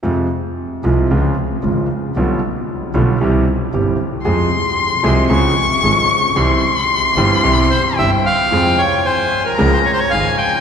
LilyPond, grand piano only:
\new Staff \with { instrumentName = "Grand piano" } { \clef bass \time 4/4 \key f \minor \tempo 4 = 113 <f, c f aes f'>8 r4 <c, c f aes f'>8 <des, des f aes f'>8 r8 <aes,, aes, des f aes f'>8 r8 | <b,, b, d g b f'>8 r4 <b,, b, d g b f'>8 <c, c e g c' g'>8 r8 <g,, g, e g c' g'>8 r8 | <f, f aes c' aes'>8 r4 <c, c f aes c' aes'>8 <des, des f aes des' aes'>8 r8 <aes,, aes, f aes des' aes'>8 r8 | <c, c e g c' g'>8 r4 <g,, g, e g c' g'>8 <c, c e g c' g'>8 r8 <g,, g, e g c' g'>8 r8 |
<f, f aes c' aes'>8 r4. <des, des f aes des' aes'>8 r8 <aes,, aes,>8 r8 | }